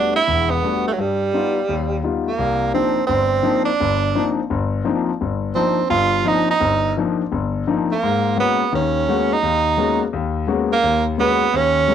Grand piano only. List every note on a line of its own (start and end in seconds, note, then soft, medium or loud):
0.00 0.15 G3 soft
0.00 0.15 A3 soft
0.00 0.15 B3 soft
0.00 0.15 D4 soft
0.00 0.15 F#4 medium
0.27 0.57 E1 medium
0.27 0.58 E2 medium
0.63 0.86 G3 soft
0.63 0.86 A3 soft
0.63 0.86 B3 soft
0.63 0.86 D4 soft
0.63 0.87 F#4 medium
0.98 1.28 G2 medium
1.33 1.57 G3 soft
1.33 1.57 B3 soft
1.33 1.57 D#4 soft
1.33 1.57 F4 medium
1.69 1.99 D#2 medium
2.03 2.27 G3 soft
2.03 2.27 B3 soft
2.03 2.27 D#4 soft
2.03 2.27 F4 medium
2.38 2.69 C2 medium
2.74 2.98 F3 medium
2.74 2.98 A#3 soft
2.74 2.98 C4 soft
2.74 2.98 D4 soft
2.74 2.98 D#4 medium
3.08 3.39 G1 medium
3.43 3.67 F3 medium
3.43 3.67 A#3 soft
3.43 3.67 C4 soft
3.43 3.68 D4 soft
3.43 3.68 D#4 medium
3.80 4.10 G1 medium
4.15 4.39 F3 medium
4.15 4.39 A#3 soft
4.15 4.39 C4 soft
4.15 4.39 D4 soft
4.15 4.39 D#4 medium
4.50 4.80 G1 medium
4.84 5.09 F3 medium
4.84 5.09 A#3 soft
4.84 5.09 C4 soft
4.84 5.09 D4 soft
4.84 5.09 D#4 medium
5.21 5.51 G1 medium
5.55 5.79 F3 medium
5.55 5.79 A#3 soft
5.55 5.79 C4 soft
5.55 5.80 D4 medium
5.55 5.80 D#4 medium
5.90 6.21 G1 medium
5.90 6.21 G2 medium
6.25 6.49 F3 medium
6.25 6.49 A#3 soft
6.25 6.50 C4 soft
6.25 6.50 D4 soft
6.25 6.49 D#4 medium
6.61 6.91 G1 medium
6.97 7.21 F3 medium
6.97 7.21 A#3 soft
6.97 7.21 C4 soft
6.97 7.21 D4 soft
6.97 7.21 D#4 medium
7.32 7.62 G1 medium
7.67 7.91 F3 medium
7.67 7.91 A#3 soft
7.67 7.91 C4 soft
7.67 7.91 D4 soft
7.67 7.91 D#4 medium
8.03 8.33 G#2 medium
8.37 8.61 G#3 soft
8.37 8.61 A#3 soft
8.37 8.61 B3 soft
8.37 8.61 C#4 soft
8.37 8.61 F#4 medium
8.73 9.03 D#2 medium
8.73 9.03 D#3 medium
9.08 9.32 G#3 medium
9.08 9.32 A#3 medium
9.08 9.32 B3 medium
9.08 9.32 C#4 soft
9.08 9.32 F#4 medium
9.43 9.73 D#2 medium
9.77 10.02 G#3 medium
9.77 10.02 A#3 medium
9.77 10.02 B3 medium
9.77 10.02 C#4 soft
9.77 10.02 F#4 medium
10.13 10.43 D#2 medium
10.47 10.72 G#3 medium
10.47 10.72 A#3 medium
10.47 10.72 B3 soft
10.47 10.72 C#4 medium
10.47 10.72 F#4 medium
10.83 11.14 D#2 medium
11.18 11.42 G#3 medium
11.18 11.42 A#3 soft
11.18 11.42 B3 soft
11.18 11.43 C#4 soft
11.18 11.43 F#4 medium
11.53 11.84 D#2 medium
11.88 11.95 G#3 medium
11.88 11.95 A#3 medium
11.88 11.95 B3 medium
11.88 11.95 C#4 medium
11.88 11.95 F#4 medium